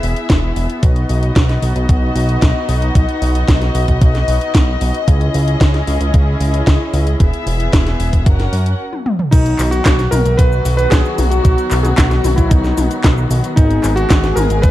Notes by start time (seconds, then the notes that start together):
Already playing: B3 E4 G#4 E5
0.03 E1, open hi-hat
0.16 closed hi-hat
0.30 E1, kick, snare, closed hi-hat
0.56 E1, open hi-hat
0.70 closed hi-hat
0.83 B1 D#4 F#4 D#5, kick, closed hi-hat
0.96 closed hi-hat
1.09 B1, open hi-hat
1.23 closed hi-hat
1.36 B1, kick, snare, closed hi-hat
1.49 snare, closed hi-hat
1.62 B1, open hi-hat
1.76 B1, closed hi-hat
1.89 B1, kick, closed hi-hat
2.16 B1, open hi-hat
2.29 closed hi-hat
2.42 B1, kick, snare, closed hi-hat
2.69 B1, open hi-hat
2.82 closed hi-hat
2.95 B1, kick, closed hi-hat
3.09 closed hi-hat
3.22 B1, open hi-hat
3.35 closed hi-hat
3.48 B1, kick, snare, closed hi-hat
3.62 snare, closed hi-hat
3.75 B1, open hi-hat
3.88 B1, kick, closed hi-hat
4.01 B1, kick, closed hi-hat
4.15 snare, closed hi-hat
4.28 B1, open hi-hat
4.41 closed hi-hat
4.55 B1, kick, snare, closed hi-hat
4.81 B1, open hi-hat
4.94 closed hi-hat
5.08 C#2 C#4 E4 G#4, kick, closed hi-hat
5.21 closed hi-hat
5.34 C#2, open hi-hat
5.48 closed hi-hat
5.61 C#2, kick, snare, closed hi-hat
5.74 snare, closed hi-hat
5.87 C#2, open hi-hat
6.01 C#2, closed hi-hat
6.14 C#2, kick, closed hi-hat
6.40 C#2, open hi-hat
6.54 closed hi-hat
6.67 C#2, kick, snare, closed hi-hat
6.94 C#2, open hi-hat
7.07 closed hi-hat
7.20 E1 B3 G#4 E5, kick, closed hi-hat
7.33 closed hi-hat
7.47 E1, open hi-hat
7.60 closed hi-hat
7.73 E1, kick, snare, closed hi-hat
7.87 snare, closed hi-hat
8.00 E1, open hi-hat
8.13 E1, kick, closed hi-hat
8.26 F#1 C#4 F#4 A#4 F#5, kick, closed hi-hat
8.40 snare, closed hi-hat
8.53 F#2, open hi-hat
8.66 closed hi-hat
8.93 high tom
9.06 mid tom
9.19 mid tom
9.31 B1 D#3 F#3 B3 D#4 F#4, kick, closed hi-hat, crash, cabasa
9.46 closed hi-hat, cabasa
9.59 B1, clap, open hi-hat, cabasa
9.71 F#4, closed hi-hat, cabasa
9.86 B1, kick, snare, clap, closed hi-hat, cabasa
9.99 snare, closed hi-hat, cabasa
10.11 B1 A#4, open hi-hat, high tom, cabasa
10.25 B1, closed hi-hat, cabasa
10.37 B1 B4, kick, closed hi-hat, cabasa
10.52 cabasa
10.65 B1, open hi-hat, cabasa
10.77 B4, closed hi-hat, cabasa
10.90 B1 G#4, kick, snare, clap, closed hi-hat, cabasa
11.05 cabasa
11.18 B1, open hi-hat, high tom, cabasa
11.30 F#4, closed hi-hat, cabasa
11.44 B1 F#4, kick, closed hi-hat, cabasa
11.58 closed hi-hat, cabasa
11.71 B1, clap, open hi-hat, cabasa
11.83 G#4, closed hi-hat, high tom, cabasa
11.96 B1 F#4, kick, snare, clap, closed hi-hat, cabasa
12.11 snare, closed hi-hat, cabasa
12.24 B1, open hi-hat, high tom, cabasa
12.36 B1 E4, kick, closed hi-hat, cabasa
12.49 B1 D#4, kick, closed hi-hat, cabasa
12.64 snare, cabasa
12.78 B1, open hi-hat, high tom, cabasa
12.91 closed hi-hat, cabasa
13.04 B1, kick, snare, clap, closed hi-hat, cabasa
13.17 cabasa
13.31 B1, open hi-hat, cabasa
13.44 closed hi-hat, cabasa
13.56 G#1 G#3 D#4 G#4, kick, closed hi-hat, cabasa
13.71 closed hi-hat, cabasa
13.84 G#1, clap, open hi-hat, cabasa
13.96 F#4, closed hi-hat, cabasa
14.10 G#1, kick, snare, clap, closed hi-hat, cabasa
14.24 snare, closed hi-hat, cabasa
14.36 G#1 A#4, open hi-hat, high tom, cabasa
14.50 G#1, closed hi-hat, cabasa
14.62 G#1 B4, kick, closed hi-hat, cabasa